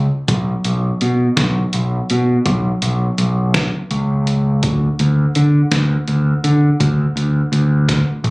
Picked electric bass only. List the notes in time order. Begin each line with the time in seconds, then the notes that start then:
0.28 B1
0.65 B1
1.02 B2
1.37 B1
1.74 B1
2.11 B2
2.46 B1
2.82 B1
3.18 B1
3.91 C#2
4.63 D2
5.00 D2
5.36 D3
5.71 D2
6.08 D2
6.44 D3
6.80 D2
7.16 D2
7.52 D2
8.24 A1